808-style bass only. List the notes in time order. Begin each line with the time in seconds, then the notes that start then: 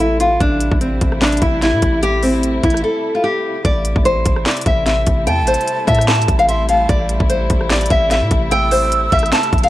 Already playing: A1
0.40 A1
0.72 A1
1.01 A1
1.42 A1
1.73 A2
1.82 A1
2.64 A1
3.65 A1
3.96 A1
4.26 A1
4.66 A1
5.07 A1
5.27 E2
5.43 A1
5.88 A2
6.28 A1
6.89 A1
7.20 A1
7.50 A1
7.90 A1
8.22 A2
8.31 A1
9.12 A1
9.53 A1